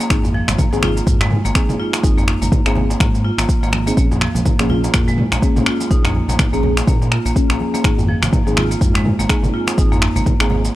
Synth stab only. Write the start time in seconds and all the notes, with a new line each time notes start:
0.10 C4 D#4 G#4
0.73 C4 D#4 G#4
1.55 C4 D#4 G#4
2.03 C4 D#4 G#4
2.66 C4 D#4 G#4
3.87 C4 D#4 G#4
3.97 A#3 C#4
4.60 A#3 C#4 G#4
5.42 A#3 C#4 G#4
5.91 A#3 C#4 G#4
6.53 A#3 C#4 G#4
7.36 A#3 C#4 G#4
7.84 C4 D#4 G#4
8.47 C4 D#4 G#4
9.29 C4 D#4 G#4
9.78 C4 D#4 G#4
10.40 C4 D#4 G#4